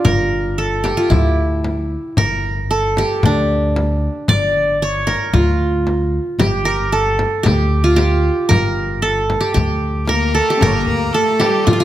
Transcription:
Already playing: D4 F4 G4
0.05 G1 A#4, frame drum
0.58 A4
0.84 G4, frame drum
0.97 F4
1.10 D2 E4, frame drum
1.64 frame drum
2.17 G1 A#4, frame drum
2.71 A4
2.97 G4, frame drum
3.23 D2 D4, frame drum
3.76 frame drum
4.28 G1 D5, frame drum
4.82 C#5
5.07 A#4, frame drum
5.33 D2 F4, frame drum
5.87 frame drum
6.39 G1 G4, frame drum
6.65 A#4
6.92 A4
7.19 frame drum
7.43 D2 G4, frame drum
7.84 F4
7.96 G4, frame drum
8.49 G1 A#4, frame drum
9.02 A4
9.30 frame drum
9.41 G4
9.54 D2 G4, frame drum
10.08 A#3 A#4, frame drum
10.34 A3 A4
10.48 G4
10.56 C#4
10.61 G1 A#3 A#4, frame drum
10.66 C#5
10.72 A#4
10.87 D2 A#4
11.12 A3 A4
11.39 G3 G4, frame drum
11.65 F3 F4, frame drum
11.73 F4
11.80 F4

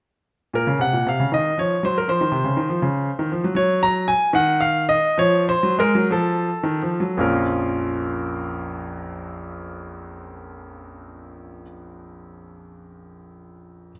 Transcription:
0.54 A#2 A#4
0.67 C#3
0.79 C3 F#5
0.93 A#2
1.07 C3 F5
1.20 C#3
1.32 D#3 D#5
1.58 F3 C#5
1.83 F#3 C5
1.98 A#4
2.08 F3 C5
2.21 D#3
2.32 C3
2.44 C#3
2.57 D#3
2.69 F3
2.82 C#3
3.19 D#3
3.32 F3
3.44 F#3
3.55 F#3 C#5
3.83 A#5
4.08 G#5
4.33 D#3 F#5
4.61 F5
4.89 D#5
5.18 F3 C#5
5.49 C5
5.63 F#3
5.78 G#3 A#4
5.95 F#3
6.11 F3 A4
6.63 D#3
6.83 F3
7.00 F#3
7.17 A#1 F2 F3 A#3 C#4 F4 A#4

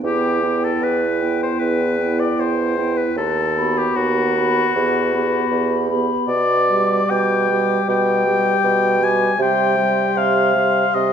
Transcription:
0.03 E2 B3 E4 G4 G5
0.42 B3 E4 G5
0.64 A4
0.81 E2 B4
1.20 B3 E4 G5
1.43 C5
1.59 E2 B4
1.97 B3 E4 G5
2.20 D5
2.38 E2 C5
2.77 B3 E4 G5
2.97 B4
3.16 D#2 A4
3.57 B3 F#4 B5
3.78 G4
3.95 D#2 F#4
4.35 B3 F#4 B5
4.74 E2 B3 G4 B5
5.13 B3 G4 B5
5.51 E2
5.89 B3 G4 B5
6.28 B2 D5
6.70 G3 G4 D6
7.10 B2 G5
7.50 G3 G4 D6
7.88 B2 G5
8.26 G3 G4 D6
8.64 B2
9.02 G3 G4 G#5 D6
9.39 C3 G3 G4 G5 C6
9.78 G3 G4 C6
10.16 C3 F5
10.56 G3 G4 C6
10.95 C3 D#5

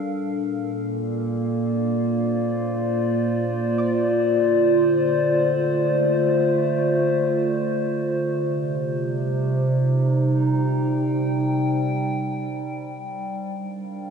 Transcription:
Already playing: G3 D4 A4 A#4 F5
0.14 A#2
0.27 A#3
0.76 D5
1.70 F4
1.99 C5
3.78 D5
4.25 D3
5.07 A3
8.36 C3
8.62 G3
9.61 D#4
10.23 G5
13.27 F5
13.36 D4
13.43 A#4

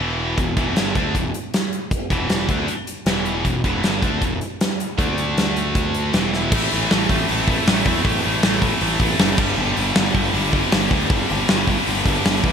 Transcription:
0.00 E1 E2 B2 E3
0.38 E1 E2 B2, kick, closed hi-hat
0.57 E1 E2 B2 E3, kick, closed hi-hat
0.76 G1 G2 D3 G3, snare, closed hi-hat
0.95 D2 D3 A3 D4, kick, closed hi-hat
1.15 E1 E2 B2, kick, closed hi-hat
1.34 closed hi-hat
1.54 snare, closed hi-hat
1.73 closed hi-hat
1.91 kick, closed hi-hat
2.10 E1 E2 B2 E3, kick, closed hi-hat
2.30 snare, closed hi-hat
2.49 D2 D3 A3 D4, kick, closed hi-hat
2.67 muted picked electric bass stroke, muted distorted electric guitar stroke, closed hi-hat
2.87 closed hi-hat
3.06 E1 E2 B2 E3, snare, closed hi-hat
3.25 closed hi-hat
3.45 E1 E2 B2, kick, closed hi-hat
3.64 E1 E2 B2 E3, kick, closed hi-hat
3.83 G1 G2 D3 G3, snare, closed hi-hat
4.02 D2 D3 A3 D4, kick, closed hi-hat
4.22 E1 E2 B2, kick, closed hi-hat
4.41 closed hi-hat
4.61 snare, closed hi-hat
4.80 closed hi-hat
4.98 D2 D3 A3 D4, kick, closed hi-hat
5.18 closed hi-hat
5.37 snare, closed hi-hat
5.56 closed hi-hat
5.75 kick, closed hi-hat
5.94 closed hi-hat
6.13 E1 E2 B2 E3, snare, closed hi-hat
6.33 snare
6.52 A1 A2 E3 A3, kick, crash
6.71 A1 A2 E3 A3, open hi-hat
6.91 A1 A2 E3 A3, snare
7.09 A1 A2 E3 A3, kick, open hi-hat
7.29 A1 A2 E3 A3, open hi-hat
7.48 A2 E3 A3, kick, open hi-hat
7.67 A1 A2 E3 A3, snare, open hi-hat
7.86 E2 A2 E3 A3, kick, open hi-hat
8.05 A1 A2 E3 A3, kick, open hi-hat
8.23 A1 A2 E3 A3, open hi-hat
8.43 A1 A2 E3 A3, snare, open hi-hat
8.62 A2 E3 A3, kick, open hi-hat
8.81 A1 A2 E3 A3, open hi-hat
8.99 A1 A2 E3 A3, kick, open hi-hat
9.19 F#1 A2 E3 A3, snare, open hi-hat
9.38 G1 G2 D3 G3, kick, crash
9.57 G1 G2 D3 G3
9.77 G1 G2 D3 G3, open hi-hat
9.96 G1 G2 D3 G3, snare
10.14 G1 G2 D3 G3, kick, open hi-hat
10.33 G1 G2 D3 G3, open hi-hat
10.52 G2 D3 G3, kick, open hi-hat
10.72 G1 G2 D3 G3, snare, open hi-hat
10.90 D2 G2 D3 G3, kick, open hi-hat
11.10 G1 G2 D3 G3, kick, open hi-hat
11.29 G1 G2 D3 G3, open hi-hat
11.48 G1 G2 D3 G3, snare, open hi-hat
11.67 G2 D3 G3, kick, open hi-hat
11.86 G1 G2 D3 G3, open hi-hat
12.05 G1 G2 D3 G3, kick, open hi-hat
12.25 G1 G2 D3 G3, snare, open hi-hat
12.44 E2 G2 D3 G3, kick, open hi-hat

